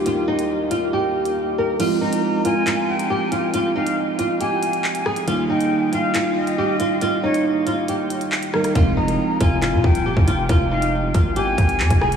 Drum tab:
CC |----------------|x---------------|----------------|----------------|
HH |x--x--x----x----|x--x--x-x--x--x-|x--x--x-x-xx-x-x|x--x--x-x--x--x-|
CP |----------------|--------x-------|------------x---|--------x-------|
SD |----------------|----------------|--------------r-|----------------|
BD |----------------|----------------|----------------|----------------|

CC |----------------|----------------|----------------|
HH |x--x--x-x-xx-x-x|x--x--x-x--x--x-|x--x--x-x-xx-x-x|
CP |------------x---|--------x-------|------------x---|
SD |--------------rr|----------------|--------------r-|
BD |----------------|o-----o---o--o--|o-----o---o--o--|